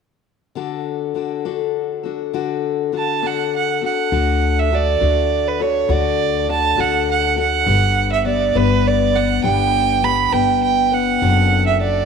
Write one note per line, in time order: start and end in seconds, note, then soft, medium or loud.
0.55 1.14 D3 medium
0.55 1.15 D4 soft
0.55 1.15 F#4 medium
0.55 1.16 A4 medium
1.14 1.45 D3 soft
1.14 1.45 D4 soft
1.14 1.44 F#4 soft
1.14 1.44 A4 soft
1.45 2.33 D3 soft
1.45 2.05 D4 soft
1.45 2.05 F#4 soft
1.45 2.03 A4 soft
2.03 2.33 D4 soft
2.03 2.33 F#4 soft
2.03 2.33 A4 soft
2.33 2.91 D3 medium
2.33 2.92 D4 medium
2.33 2.92 F#4 medium
2.33 2.93 A4 medium
2.92 3.23 D3 soft
2.92 3.22 D4 soft
2.92 3.22 F#4 soft
2.92 3.21 A4 soft
2.98 3.28 A5 soft
3.22 3.82 D3 soft
3.22 3.82 D4 soft
3.22 3.81 F#4 soft
3.22 3.80 A4 soft
3.26 3.54 F#5 medium
3.56 3.82 F#5 soft
3.81 4.11 D4 soft
3.81 4.11 F#4 soft
3.81 4.11 A4 soft
3.86 4.60 F#5 medium
4.12 4.97 D2 medium
4.12 4.70 D3 medium
4.12 4.71 D4 medium
4.12 4.71 F#4 soft
4.12 4.71 A4 medium
4.59 4.76 E5 medium
4.71 5.00 D3 soft
4.71 5.00 D4 soft
4.71 5.00 F#4 soft
4.71 4.99 A4 soft
4.71 5.49 D5 medium
5.00 5.85 D2 medium
5.00 5.60 D3 soft
5.00 5.61 D4 soft
5.00 5.60 F#4 soft
5.00 5.59 A4 soft
5.48 5.63 B4 medium
5.60 5.88 D4 soft
5.60 5.88 F#4 soft
5.60 5.89 A4 soft
5.60 5.93 C#5 medium
5.89 6.74 D2 medium
5.89 6.47 D3 medium
5.89 6.48 D4 medium
5.89 6.48 F#4 medium
5.89 6.49 A4 medium
5.89 6.49 D5 medium
6.48 6.77 D3 soft
6.48 6.76 D4 soft
6.48 6.76 F#4 medium
6.48 6.76 A4 soft
6.48 6.81 A5 medium
6.77 7.63 D2 medium
6.77 7.37 D3 soft
6.77 7.38 D4 soft
6.77 7.36 F#4 soft
6.77 7.35 A4 medium
6.77 7.09 F#5 medium
7.11 7.37 F#5 medium
7.36 7.65 D4 soft
7.36 7.67 F#4 soft
7.36 7.66 A4 soft
7.36 8.08 F#5 medium
7.66 8.51 G1 medium
7.66 8.24 G3 medium
7.66 8.26 B3 medium
7.66 8.25 D4 medium
7.66 8.26 B4 medium
8.12 8.25 E5 medium
8.25 8.55 G3 soft
8.25 8.54 B3 medium
8.25 8.55 D4 soft
8.25 8.54 B4 medium
8.25 8.58 D5 medium
8.55 9.40 G1 medium
8.55 9.15 G3 soft
8.55 9.16 B3 soft
8.55 9.16 D4 soft
8.55 9.14 B4 medium
8.55 8.88 B4 medium
8.87 9.17 D5 medium
9.15 9.43 B3 soft
9.15 9.43 D4 soft
9.15 9.44 B4 soft
9.15 9.43 F#5 medium
9.43 10.29 G1 medium
9.43 10.01 G3 medium
9.43 10.03 B3 medium
9.43 10.02 D4 medium
9.43 10.04 B4 medium
9.43 10.06 G5 medium
10.02 10.33 G3 soft
10.02 10.32 B3 soft
10.02 10.32 D4 soft
10.02 10.31 B4 soft
10.02 10.34 B5 medium
10.32 11.18 G1 medium
10.32 10.93 G3 soft
10.32 10.92 B3 soft
10.32 10.92 D4 soft
10.32 10.91 B4 medium
10.32 10.62 G5 medium
10.63 10.95 G5 medium
10.91 11.21 B3 soft
10.91 11.21 D4 soft
10.91 11.21 B4 soft
10.91 11.66 F#5 medium
11.22 12.05 F#1 medium
11.22 11.79 F#3 medium
11.22 11.81 B3 medium
11.22 11.80 D4 soft
11.22 11.81 A4 medium
11.66 11.80 E5 medium
11.80 12.05 F#3 soft
11.80 12.05 B3 soft
11.80 12.05 D4 soft
11.80 12.05 A4 soft
11.80 12.05 D5 medium